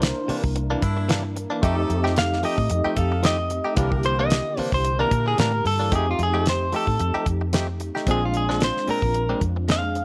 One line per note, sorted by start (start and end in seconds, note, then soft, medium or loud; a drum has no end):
0.00 0.11 C2 loud
0.00 1.58 A#3 medium
0.00 1.59 D4 medium
0.00 1.59 E4 medium
0.00 1.60 A#4 medium
0.00 0.35 C5 loud
0.00 snare loud
0.00 closed hi-hat medium
0.28 0.43 C3 medium
0.28 0.44 E3 medium
0.28 0.43 A#3 medium
0.28 0.42 D4 medium
0.28 muted fingered electric bass stroke soft
0.28 open hi-hat medium
0.44 0.74 C2 medium
0.44 muted clean electric guitar stroke soft
0.44 kick medium
0.56 muted clean electric guitar stroke soft
0.56 closed hi-hat medium
0.70 0.81 C3 medium
0.70 0.82 E3 medium
0.70 0.82 A#3 medium
0.70 0.83 D4 medium
0.82 1.45 G2 medium
0.82 1.24 D4 medium
0.82 1.24 E4 medium
0.82 muted clean electric guitar stroke soft
0.82 kick medium
0.82 closed hi-hat medium
0.97 muted clean electric guitar stroke medium
1.08 1.24 C3 medium
1.08 1.24 E3 medium
1.08 1.23 A#3 medium
1.08 1.23 D4 medium
1.08 snare loud
1.08 closed hi-hat medium
1.24 muted clean electric guitar stroke medium
1.36 muted clean electric guitar stroke soft
1.36 closed hi-hat medium
1.50 1.62 E3 medium
1.50 1.63 A#3 medium
1.50 1.63 D4 medium
1.61 1.84 F2 loud
1.61 1.77 F3 medium
1.61 3.73 A3 medium
1.61 1.77 A3 medium
1.61 3.73 C4 medium
1.61 2.16 D#4 medium
1.61 3.73 D#4 medium
1.61 1.77 D#4 medium
1.61 2.16 G4 medium
1.61 3.74 G4 medium
1.61 1.76 G4 medium
1.61 2.17 A4 loud
1.61 kick loud
1.61 closed hi-hat medium
1.77 muted clean electric guitar stroke medium
1.89 2.43 F2 loud
1.89 muted clean electric guitar stroke medium
1.89 closed hi-hat medium
2.04 2.20 F3 medium
2.04 2.20 A3 medium
2.04 2.20 D#4 medium
2.04 2.19 G4 medium
2.04 snare soft
2.16 2.44 F5 medium
2.16 snare loud
2.16 closed hi-hat medium
2.33 snare soft
2.43 2.58 F3 medium
2.43 2.58 A3 medium
2.43 2.57 D#4 medium
2.43 2.57 G4 medium
2.43 2.99 D#5 medium
2.43 open hi-hat medium
2.58 2.67 A2 medium
2.58 kick medium
2.70 2.82 F2 medium
2.70 muted clean electric guitar stroke soft
2.70 closed hi-hat loud
2.84 2.96 F3 soft
2.84 2.96 A3 medium
2.84 2.96 D#4 medium
2.84 2.97 G4 medium
2.84 muted fingered electric bass stroke soft
2.96 3.59 F2 medium
2.96 3.38 D#4 medium
2.96 3.38 G4 medium
2.96 3.38 A4 medium
2.96 3.24 F5 medium
2.96 muted clean electric guitar stroke soft
2.96 kick medium
2.96 closed hi-hat medium
3.12 muted clean electric guitar stroke soft
3.23 3.38 F3 medium
3.23 3.38 A3 medium
3.23 3.38 D#4 medium
3.23 3.37 G4 medium
3.23 3.77 D#5 loud
3.23 snare loud
3.23 closed hi-hat medium
3.38 muted clean electric guitar stroke soft
3.50 muted clean electric guitar stroke soft
3.50 closed hi-hat medium
3.65 3.77 A3 soft
3.65 3.77 D#4 soft
3.65 3.77 G4 medium
3.76 4.40 C2 loud
3.76 3.92 C3 medium
3.76 5.87 D3 medium
3.76 3.91 E3 medium
3.76 5.87 A#3 medium
3.76 3.91 A#3 medium
3.76 4.31 D4 medium
3.76 3.91 D4 medium
3.76 4.31 E4 medium
3.76 5.88 E4 medium
3.76 5.88 G4 medium
3.76 4.31 A#4 medium
3.76 kick loud
3.76 closed hi-hat medium
3.92 muted clean electric guitar stroke soft
3.92 kick medium
4.03 4.19 C5 loud
4.03 muted clean electric guitar stroke soft
4.03 closed hi-hat medium
4.19 4.35 C3 medium
4.19 4.35 E3 medium
4.19 4.34 A#3 medium
4.19 4.34 D4 medium
4.19 4.60 D#5 loud
4.30 snare loud
4.30 closed hi-hat medium
4.57 4.72 C3 medium
4.57 4.72 E3 medium
4.57 4.72 A#3 medium
4.57 4.71 D4 medium
4.57 4.72 C5 loud
4.57 muted fingered electric bass stroke soft
4.57 open hi-hat medium
4.72 5.03 C2 medium
4.72 5.00 C5 loud
4.72 muted clean electric guitar stroke soft
4.72 kick medium
4.85 muted clean electric guitar stroke soft
4.85 closed hi-hat medium
4.99 5.10 C3 medium
4.99 5.11 E3 medium
4.99 5.11 A#3 medium
4.99 5.11 D4 medium
4.99 5.26 A#4 medium
5.10 5.36 A#2 medium
5.10 5.53 D4 medium
5.10 5.53 E4 medium
5.10 5.53 A#4 medium
5.10 muted clean electric guitar stroke soft
5.10 kick medium
5.10 closed hi-hat medium
5.26 5.39 G#4 medium
5.26 muted clean electric guitar stroke soft
5.38 5.63 A2 medium
5.38 5.53 C3 medium
5.38 5.53 E3 medium
5.38 5.52 A#3 medium
5.38 5.52 D4 medium
5.38 5.65 A#4 medium
5.38 snare loud
5.38 closed hi-hat medium
5.53 muted clean electric guitar stroke soft
5.65 5.89 G2 medium
5.65 5.92 A4 loud
5.65 muted clean electric guitar stroke soft
5.65 open hi-hat medium
5.79 5.91 E3 soft
5.79 5.91 A#3 medium
5.79 5.92 D4 medium
5.91 6.13 F2 medium
5.91 6.06 F3 medium
5.91 8.02 A3 medium
5.91 6.07 A3 medium
5.91 8.03 C4 medium
5.91 6.06 D#4 medium
5.91 8.03 D#4 medium
5.91 6.06 G4 medium
5.91 8.04 G4 medium
5.91 kick loud
5.91 closed hi-hat medium
5.96 6.08 G#4 medium
6.07 6.21 F4 medium
6.07 muted clean electric guitar stroke soft
6.19 6.72 F2 loud
6.19 muted clean electric guitar stroke soft
6.19 closed hi-hat medium
6.23 6.47 G#4 medium
6.34 6.49 F3 medium
6.34 6.49 A3 medium
6.34 6.49 D#4 medium
6.34 6.49 G4 medium
6.46 6.74 C5 medium
6.46 snare loud
6.46 closed hi-hat medium
6.72 6.87 F3 medium
6.72 6.87 A3 medium
6.72 6.87 D#4 medium
6.72 6.86 G4 medium
6.72 7.26 A4 medium
6.72 open hi-hat medium
6.87 6.97 A2 medium
6.87 muted clean electric guitar stroke soft
6.87 kick medium
6.99 7.11 F2 medium
6.99 muted clean electric guitar stroke soft
6.99 closed hi-hat medium
7.14 7.25 F3 soft
7.14 7.26 A3 medium
7.14 7.26 D#4 medium
7.14 7.26 G4 medium
7.14 muted fingered electric bass stroke soft
7.26 7.89 F2 medium
7.26 muted clean electric guitar stroke soft
7.26 kick medium
7.26 closed hi-hat medium
7.41 muted clean electric guitar stroke soft
7.53 7.68 F3 medium
7.53 7.68 A3 medium
7.53 7.67 D#4 medium
7.53 7.67 G4 medium
7.53 snare loud
7.53 closed hi-hat medium
7.68 muted clean electric guitar stroke soft
7.80 muted clean electric guitar stroke soft
7.80 closed hi-hat medium
7.95 8.08 A3 soft
7.95 8.08 D#4 soft
7.95 8.07 G4 medium
7.95 snare soft
8.06 8.70 A#1 loud
8.06 8.22 A#2 medium
8.06 9.64 G#3 medium
8.06 8.22 G#3 medium
8.06 9.65 C4 medium
8.06 8.22 C4 medium
8.06 9.65 D4 medium
8.06 8.21 D4 medium
8.06 9.65 F4 medium
8.06 kick loud
8.06 closed hi-hat medium
8.11 8.23 G#4 medium
8.22 8.35 F4 medium
8.22 muted clean electric guitar stroke soft
8.34 8.61 G#4 medium
8.34 muted clean electric guitar stroke soft
8.34 closed hi-hat medium
8.49 8.64 A#2 medium
8.49 8.64 G#3 medium
8.49 8.64 C4 medium
8.49 8.64 D4 medium
8.49 snare soft
8.60 8.89 C5 medium
8.60 snare loud
8.60 closed hi-hat medium
8.77 snare soft
8.87 9.02 A#2 medium
8.87 9.02 G#3 medium
8.87 9.02 C4 medium
8.87 9.01 D4 medium
8.87 9.41 A#4 loud
8.87 muted fingered electric bass stroke soft
8.87 open hi-hat medium
9.02 9.33 A#1 medium
9.02 muted clean electric guitar stroke soft
9.02 kick medium
9.14 muted clean electric guitar stroke soft
9.14 closed hi-hat medium
9.29 9.40 A#2 soft
9.29 9.41 G#3 medium
9.29 9.41 C4 medium
9.29 9.41 D4 medium
9.41 10.04 F2 medium
9.41 kick medium
9.41 closed hi-hat medium
9.56 muted clean electric guitar stroke soft
9.68 9.83 A#2 medium
9.68 10.05 G#3 soft
9.68 9.83 G#3 medium
9.68 10.05 C4 soft
9.68 9.82 C4 medium
9.68 10.05 D4 soft
9.68 9.82 D4 medium
9.68 10.05 G#4 medium
9.68 10.05 F5 medium
9.68 snare loud
9.68 closed hi-hat medium
9.83 muted clean electric guitar stroke soft
9.95 muted clean electric guitar stroke soft
9.95 closed hi-hat medium